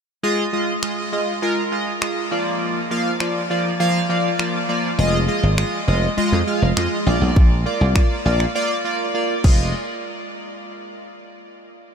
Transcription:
0.23 analog polysynth G#3 F4 D#5
0.53 analog polysynth G#3 F4 D#5
0.83 analog polysynth G#3 F4 D#5, finger snap
1.12 analog polysynth G#3 F4 D#5
1.42 analog polysynth G#3 F4 A#4
1.72 analog polysynth G#3 F4 D#5
2.02 analog polysynth G#3 F4 D#5, finger snap
2.31 analog polysynth F3 A#3 F4 D5
2.91 analog polysynth F3 A#3 F4 F5
3.20 analog polysynth F3 A#3 F4 D5, finger snap
3.50 analog polysynth F3 A#3 F4 D5
3.80 analog polysynth F3 A#3 F4 F5
4.09 analog polysynth F3 A#3 F4 D5
4.39 analog polysynth F3 A#3 F4 D5, finger snap
4.69 analog polysynth F3 A#3 F4 D5
4.98 slap bass F1, analog polysynth G#3 F4 D#5
5.28 analog polysynth G#3 F4 D#5
5.43 slap bass G#1
5.58 analog polysynth G#3 F4 D#5, finger snap
5.87 slap bass F1, analog polysynth G#3 F4 D#5
6.17 analog polysynth G#3 F4 D#5, muted slap bass stroke
6.32 slap bass F2
6.47 analog polysynth G#3 F4 F5
6.62 slap bass F1
6.77 slap bass F2, analog polysynth G#3 F4 D#5, finger snap
7.06 slap bass A#1, analog polysynth A#3 F4 D5
7.21 slap bass B1
7.36 slap bass A#1, kick
7.66 analog polysynth A#3 F4 D5
7.81 slap bass C2
7.96 analog polysynth A#3 F4 D5, finger snap, kick
8.25 slap bass A#1, analog polysynth A#3 F4 D5
8.40 finger snap
8.55 analog polysynth A#3 F4 D5
8.85 analog polysynth A#3 F4 D5
9.14 analog polysynth A#3 F4 D5
9.44 slap bass F1, analog polysynth G#3 F4 D#5, kick, crash

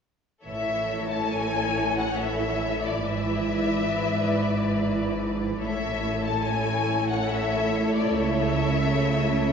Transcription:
0.46 double bass section A1, cello section A2, viola section E3 E4, violin section A4 C#5 E5
1.12 violin section A5
1.34 violin section G#5
1.99 violin section F#5
2.20 violin section E5
2.85 violin section D5
3.05 double bass section G#1, cello section G#2, violin section B4 D5 E5
5.62 double bass section A1, cello section A2, viola section A3 E4, violin section A4 C#5 E5
6.25 violin section A5
6.46 violin section G#5
7.10 violin section F#5
7.32 violin section E5
7.96 violin section D5
8.15 double bass section C#2, cello section C#3, violin section E5

